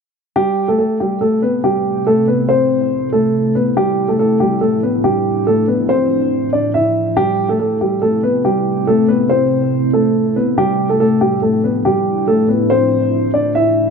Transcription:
0.36 C3 G3 A3 C4 E4 G4
0.68 A3 A4
0.78 A3 A4
1.00 G3 G4
1.21 A3 A4
1.42 B3 B4
1.64 G3 G4
2.07 A3 A4
2.28 B3 B4
2.49 C4 C5
3.13 A3 A4
3.55 B3 B4
3.76 A2 F3 G3 D4 G4
4.08 A3 A4
4.19 A3 A4
4.40 G3 G4
4.61 A3 A4
4.83 B3 B4
5.04 G3 G4
5.47 A3 A4
5.68 B3 B4
5.89 C4 C5
6.53 D4 D5
6.74 E4 E5
7.17 C3 G3 A3 C4 G4
7.49 A3 A4
7.59 A3 A4
7.81 G3 G4
8.02 A3 A4
8.23 B3 B4
8.45 G3 G4
8.87 A3 A4
9.08 B3 B4
9.30 C4 C5
9.93 A3 A4
10.36 B3 B4
10.57 A2 F3 G3 D4 E4 G4
10.89 A3 A4
11.00 A3 A4
11.21 G3 G4
11.42 A3 A4
11.64 B3 B4
11.85 G3 G4
12.28 A3 A4
12.49 B3 B4
12.70 C4 C5
13.34 D4 D5
13.55 E4 E5

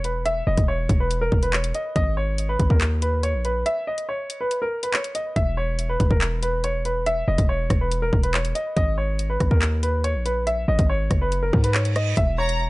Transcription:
Already playing: E1
0.04 B4, closed hi-hat
0.26 E5, closed hi-hat
0.47 E1 D#5
0.58 E1, kick, closed hi-hat
0.68 C#5
0.89 E1, kick, closed hi-hat
1.00 B4
1.11 closed hi-hat
1.21 A#4
1.32 E1, kick
1.43 B4, closed hi-hat
1.53 C#5, clap
1.64 closed hi-hat
1.75 D#5, closed hi-hat
1.96 G#1 D#5, kick, closed hi-hat
2.17 C#5
2.38 closed hi-hat
2.49 B4
2.59 G#1, kick, closed hi-hat
2.70 D#2 A#4, kick
2.81 clap, closed hi-hat
3.02 B4, closed hi-hat
3.23 C#5, closed hi-hat
3.34 A#1
3.45 B4, closed hi-hat
3.66 E5, closed hi-hat
3.87 D#5
3.98 closed hi-hat
4.09 C#5
4.30 closed hi-hat
4.41 B4
4.51 closed hi-hat
4.62 A#4
4.83 B4, closed hi-hat
4.94 C#5, clap
5.04 closed hi-hat
5.15 D#5, closed hi-hat
5.36 E1 E5, kick, closed hi-hat
5.57 C#5
5.79 closed hi-hat
5.89 B4
6.00 E1, kick, closed hi-hat
6.11 E1 A#4, kick
6.21 clap, closed hi-hat
6.43 B4, closed hi-hat
6.64 C#5, closed hi-hat
6.85 B4, closed hi-hat
7.06 E5, closed hi-hat
7.28 E1 D#5
7.38 E1, kick, closed hi-hat
7.49 C#5
7.70 E1, kick, cross-stick, closed hi-hat
7.81 B4
7.92 closed hi-hat
8.02 A#4
8.13 E1, kick
8.23 B4, closed hi-hat
8.34 C#5, clap
8.45 closed hi-hat
8.55 D#5, closed hi-hat
8.76 G#1 D#5, kick, closed hi-hat
8.98 C#5
9.19 closed hi-hat
9.30 B4
9.40 G#1, kick, cross-stick, closed hi-hat
9.51 D#2 A#4, kick
9.62 clap, closed hi-hat
9.83 B4, closed hi-hat
10.04 C#5, closed hi-hat
10.15 A#1
10.26 B4, closed hi-hat
10.47 E5, closed hi-hat
10.68 G#1 D#5
10.79 G#1, kick, closed hi-hat
10.89 C#5
11.11 F#1, kick, cross-stick, closed hi-hat
11.22 B4
11.32 closed hi-hat, reverse cymbal
11.43 A#4
11.53 G#2, kick
11.64 B4, closed hi-hat
11.75 C#5, clap
11.85 closed hi-hat
11.96 D#5, cross-stick, closed hi-hat
12.17 E1 E5, kick, closed hi-hat
12.38 C#5 A#5
12.49 closed hi-hat

